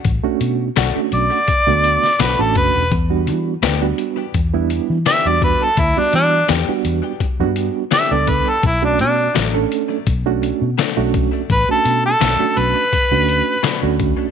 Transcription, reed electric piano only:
X:1
M:4/4
L:1/16
Q:"Swing 16ths" 1/4=84
K:Bm
V:1 name="Reed electric piano"
z [A,CDF]2 z2 [A,CDF]2 z2 [A,B,DF]2 z2 [A,CDF]2 z | z [G,B,DF]2 z2 [G,B,DF]2 z2 [G,B,DE]2 z2 [G,B,DF]2 z | z [G,B,DF]2 z2 [G,B,DF]2 z2 [G,B,DF]2 z2 [G,B,DA]2 z | z [A,CDF]2 z2 [A,CDA]2 z2 [A,CDF]2 z2 [A,CDF]2 z |
z [A,CDF]2 z2 [A,CDF]2 z2 [A,CDF]2 z2 [A,CDF]2 z |]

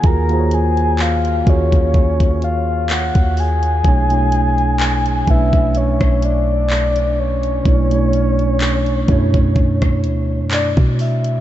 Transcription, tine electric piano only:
X:1
M:4/4
L:1/16
Q:"Swing 16ths" 1/4=63
K:Cblyd
V:1 name="Tine electric piano"
[E,B,FGAB] [E,B,FGA=cd]3 z2 [E,B,FGAd]6 z4 | [=B,,=A,=D=E^c] [B,,A,DEc]3 z2 [B,,A,^CDE=B]6 z4 | [=B,,=A,=D=E^c] [B,,A,DEc]3 z2 [B,,A,DEc]6 z4 |]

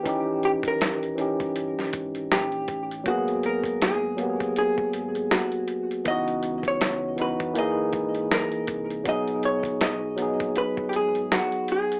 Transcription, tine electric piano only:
X:1
M:4/4
L:1/8
Q:"Swing 16ths" 1/4=80
K:B
V:1 name="Tine electric piano"
[E,CD=G]2 z [E,CDG]3 z2 | [F,A,B,G]2 z [F,A,B,=G^G]3 z2 | [E,B,DF]2 z [E,B,DF] [E,A,DG]3 z | [F,B,DG]2 z [F,B,DG]3 z2 |]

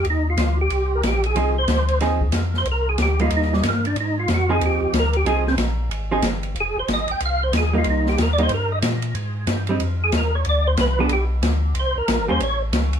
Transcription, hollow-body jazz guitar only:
X:1
M:4/4
L:1/8
Q:"Swing" 1/4=184
K:Cm
V:1 name="Hollow-body jazz guitar"
z8 | [F,CEA] z3 [F,CEA] z3 | z3 [G,B,E]3 z2 | z3 [F,CEA]3 z2 |
[F,CEA] z4 [F,CEA] z2 | z6 z [G,B,E]- | [G,B,E]2 z [G,B,E] z4 | z3 [G,CE] z4 |
z3 [F,=B,D] z4 | z3 [G,B,_D] z4 |]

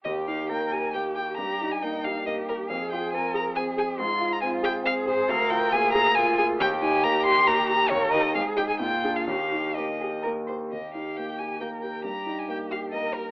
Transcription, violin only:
X:1
M:3/4
L:1/16
Q:1/4=136
K:Eb
V:1 name="Violin"
e2 f2 g2 a2 g2 g2 | b3 a g2 f2 e2 B2 | f2 g2 a2 b2 a2 a2 | c'3 b a2 g2 f2 c2 |
f2 g2 a2 b2 a2 a2 | g2 a2 b2 c'2 b2 b2 | _d2 e2 f2 g a g3 f | f4 e4 z4 |
e2 f2 g2 a2 g2 g2 | b3 a g2 f2 e2 B2 |]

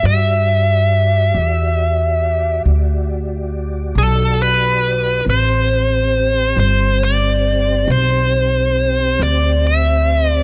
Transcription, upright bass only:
X:1
M:12/8
L:1/8
Q:3/8=46
K:Em
V:1 name="Upright bass" clef=bass
G,,3 E,,3 D,,3 B,,,3 | A,,,3 G,,,3 B,,,3 D,,3 |]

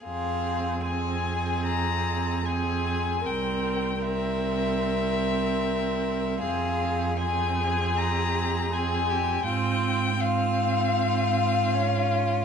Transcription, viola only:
X:1
M:4/4
L:1/8
Q:1/4=77
K:Fm
V:1 name="Viola"
C2 C4 C2 | C2 C6 | C2 C4 C2 | C2 C4 D2 |]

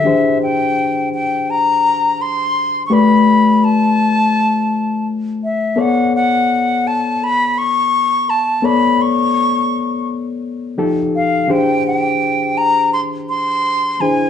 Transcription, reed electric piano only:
X:1
M:4/4
L:1/8
Q:"Swing 16ths" 1/4=84
K:Bm
V:1 name="Reed electric piano"
[E,DG^G^B]8 | [A,GBd]8 | [B,Acd]8 | [B,Acd]6 [=F,_EGA]2 |
[E,DG^G^B]6- [E,D=G^GB] [E,DEGB] |]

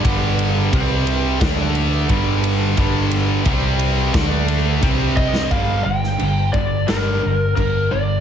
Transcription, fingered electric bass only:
X:1
M:4/4
L:1/8
Q:1/4=88
K:Cdor
V:1 name="Fingered electric bass" clef=bass
G,,,2 C,,2 D,,2 G,,,2 | G,,,2 C,,2 D,,2 C,,2 | G,,, G,,, G,,, G,,, G,,, G,,, G,,, G,,, |]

